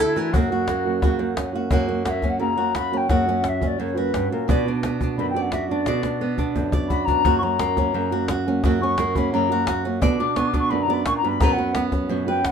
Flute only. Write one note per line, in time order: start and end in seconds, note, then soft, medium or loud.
0.00 0.35 E4 loud
0.33 1.54 F#4 medium
2.05 2.11 F#5 medium
2.10 2.31 E5 medium
2.30 2.40 F#5 medium
2.40 2.76 A#5 medium
2.75 2.99 B5 medium
2.97 3.10 G5 medium
3.09 3.44 F#5 medium
3.44 3.50 F#5 medium
3.49 3.69 E5 medium
3.67 3.81 D5 medium
3.79 3.98 C#5 medium
3.96 4.31 B4 medium
4.32 4.48 A#4 medium
4.51 4.66 B4 medium
5.18 5.29 B5 medium
5.30 5.43 G5 medium
5.41 5.54 F#5 medium
5.52 5.69 E5 medium
5.70 6.52 D5 medium
6.89 7.07 B5 medium
7.05 7.38 A#5 loud
7.38 7.44 C#6 medium
7.43 8.23 A#5 medium
8.82 9.17 C#6 medium
9.16 9.32 B5 medium
9.33 9.81 A#5 medium
10.19 10.38 D6 medium
10.36 10.49 C#6 medium
10.48 10.59 D6 medium
10.59 10.72 C#6 loud
10.70 10.84 B5 medium
10.83 10.95 A#5 medium
10.93 11.05 B5 medium
11.06 11.16 C#6 loud
11.17 11.30 A#5 medium
11.28 11.42 B5 medium
11.41 11.54 A#5 medium
11.53 11.87 F#5 medium
12.28 12.47 G5 medium
12.45 12.52 F#5 loud